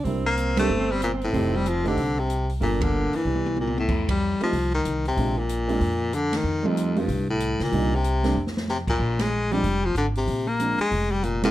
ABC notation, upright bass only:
X:1
M:4/4
L:1/8
Q:"Swing" 1/4=188
K:Fmix
V:1 name="Upright bass" clef=bass
C,,4 G,,,4 | F,,,4 C,,4 | G,,,3 z C,,4 | F,,3 z C,,2 C,,2 |
B,,,4 F,,4 | F,,4 C,,3 _D,, | C,,4 F,,4 | B,,,4 F,,,2 _A,,,2 |
B,,,3 z F,,,4 |]